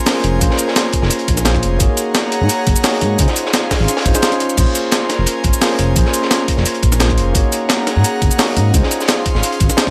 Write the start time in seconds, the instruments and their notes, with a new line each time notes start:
Already playing: tine electric piano A#3 C#4 F4 G#4 C5, analog synth pad C#4 A#4 G#5 C6
0.06 tine electric piano A#3 C#4 F4 G#4 C5, snare, closed hi-hat, open hi-hat, shaker
0.24 analog synth bass F1, closed hi-hat
0.39 analog synth bass A#1, tine electric piano A#3 C#4 F4 G#4, kick, closed hi-hat, shaker
0.43 tine electric piano C5
0.51 snare
0.57 closed hi-hat, shaker
0.68 snare
0.76 snare, closed hi-hat, shaker
0.93 kick, closed hi-hat
1.02 analog synth bass F1, snare
1.10 closed hi-hat, shaker
1.19 closed hi-hat
1.28 analog synth bass A#1, kick, closed hi-hat, shaker
1.37 snare, closed hi-hat, shaker
1.44 tine electric piano A#3 C#4 F4 G#4 C5, snare, closed hi-hat, shaker
1.55 kick, snare
1.63 analog synth bass F1, closed hi-hat
1.78 analog synth bass G#1, tine electric piano A#3 D#4 F#4 G#4, analog synth pad G#4 C#5 F#5 A#5, kick, closed hi-hat, shaker
1.82 tine electric piano C#5
1.97 closed hi-hat, shaker
2.15 snare, closed hi-hat, shaker
2.32 closed hi-hat
2.41 analog synth bass G#2
2.49 closed hi-hat, shaker
2.67 analog synth bass F#1, kick, closed hi-hat, shaker
2.76 closed hi-hat, shaker
2.83 tine electric piano A#3 D#4 F#4 G#4 C#5, snare, closed hi-hat, open hi-hat, shaker
3.01 analog synth bass G#2, closed hi-hat
3.17 analog synth bass C#2, tine electric piano C#4 D#4 F4 G#4, analog synth pad C#4 G#4 F5 C6, kick, closed hi-hat, shaker
3.21 tine electric piano C5
3.28 snare, closed hi-hat
3.36 closed hi-hat, shaker
3.46 snare
3.53 snare, closed hi-hat, shaker
3.71 kick, snare, closed hi-hat, open hi-hat, shaker
3.80 analog synth bass G#1
3.88 snare, closed hi-hat, shaker
3.97 snare, open hi-hat
4.05 analog synth bass G#1, tine electric piano C#4 D#4 F4 G#4 C5, kick, closed hi-hat, shaker
4.14 tine electric piano C#4 D#4 F4 G#4 C5, snare, closed hi-hat, shaker
4.22 snare, closed hi-hat, shaker
4.32 snare, closed hi-hat
4.40 closed hi-hat
4.49 closed hi-hat, shaker
4.56 analog synth bass A#1, tine electric piano A#3 C#4 F4 G#4, analog synth pad A#4 G#5, kick, closed hi-hat, crash, shaker
4.60 tine electric piano C5
4.75 closed hi-hat, shaker
4.91 snare, closed hi-hat, shaker
5.09 snare, closed hi-hat
5.19 analog synth bass F1
5.26 closed hi-hat, shaker
5.44 analog synth bass G#1, kick, closed hi-hat, shaker
5.53 closed hi-hat, shaker
5.61 tine electric piano A#3 C#4 F4 G#4 C5, snare, closed hi-hat, open hi-hat, shaker
5.79 analog synth bass F1, closed hi-hat
5.94 analog synth bass A#1, tine electric piano A#3 C#4 F4 G#4, kick, closed hi-hat, shaker
5.99 tine electric piano C5
6.05 snare
6.13 closed hi-hat, shaker
6.22 snare
6.31 snare, closed hi-hat, shaker
6.48 kick, closed hi-hat
6.57 analog synth bass F1, snare
6.66 closed hi-hat, shaker
6.74 closed hi-hat
6.83 analog synth bass A#1, kick, closed hi-hat, shaker
6.92 snare, closed hi-hat, shaker
6.99 tine electric piano A#3 C#4 F4 G#4 C5, snare, closed hi-hat, shaker
7.09 kick, snare
7.18 analog synth bass F1, closed hi-hat
7.33 analog synth bass G#1, tine electric piano A#3 D#4 F#4 G#4, analog synth pad G#4 F#5 A#5, kick, closed hi-hat, shaker
7.37 tine electric piano C#5
7.52 closed hi-hat, shaker
7.69 snare, closed hi-hat, shaker
7.87 snare, closed hi-hat
7.96 analog synth bass G#2
8.04 closed hi-hat, shaker
8.22 analog synth bass F#1, kick, closed hi-hat, shaker
8.31 closed hi-hat, shaker
8.38 tine electric piano A#3 D#4 F#4 G#4 C#5, snare, closed hi-hat, open hi-hat, shaker
8.57 analog synth bass G#2, closed hi-hat
8.72 analog synth bass C#2, tine electric piano C#4 D#4 F4 G#4, analog synth pad F5 C6, kick, closed hi-hat, shaker
8.76 tine electric piano C5
8.83 snare
8.91 closed hi-hat, shaker
9.01 snare, shaker
9.08 snare, closed hi-hat, shaker
9.25 kick, closed hi-hat
9.35 analog synth bass G#1, snare
9.43 closed hi-hat, shaker
9.52 closed hi-hat
9.60 analog synth bass G#1, kick, closed hi-hat, shaker
9.70 snare, closed hi-hat, shaker
9.77 tine electric piano C#4 D#4 F4 G#4 C5, snare, closed hi-hat, shaker
9.87 kick, snare